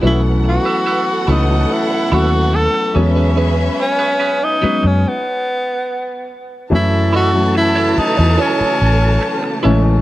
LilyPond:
<<
  \new Staff \with { instrumentName = "Violin section" } { \time 4/4 \key fis \dorian \tempo 4 = 72 <b a' fis''>2.~ <b a' fis''>8 <cis' b' e''>8~ | <cis' b' e''>2 r2 | <a' a''>1 | }
  \new Staff \with { instrumentName = "Clean electric guitar" } { \time 4/4 \key fis \dorian <e' a' b'>16 r8 <e' a' b'>16 <e' a' b'>16 r16 <e' a' b'>16 r8. <e' a' b'>16 r8. <cis' gis' cis''>16 <cis' gis' b'>16 | <cis' gis' b'>16 r8 <cis' gis' b'>16 <cis' gis' b'>16 r16 <cis' gis' b'>16 r2 r16 | r8 <e' a' dis''>16 r8 <e' a' cis''>16 r8 <e' a' cis''>8 r4 <e' a' cis''>16 r16 | }
  \new Staff \with { instrumentName = "Tenor saxophone" } { \time 4/4 \key fis \dorian e'8 fis'4 dis'8 e'8 fis'8 a'8 r8 | r8 cis'8. dis'8 cis'16 b4. r8 | e'8 fis'8 e'8 dis'8 cis'4. r8 | }
  \new Staff \with { instrumentName = "Grand piano" } { \time 4/4 \key fis \dorian <e fis a cis'>4 r8 <e fis a cis'>16 <e fis a cis'>8 r16 <fis a cis' e'>4 <fis gis b cis'>8~ | <fis gis b cis'>4 r8 <fis gis b cis'>8 r2 | <e fis a cis'>8 r16 <e fis a cis'>4~ <e fis a cis'>16 r4. <e gis a cis'>16 r16 | }
  \new Staff \with { instrumentName = "String section" } { \clef bass \time 4/4 \key fis \dorian r1 | r1 | <cis e fis a>1 | }
  \new Staff \with { instrumentName = "Fingered electric bass" } { \clef bass \time 4/4 \key fis \dorian b,,8. r8. cis,8 r8 dis,8. r16 e,8~ | e,8 r4 r16 fis,16 r2 | fis,4. r16 e,16 r8 a,,8 r8 a,,8 | }
>>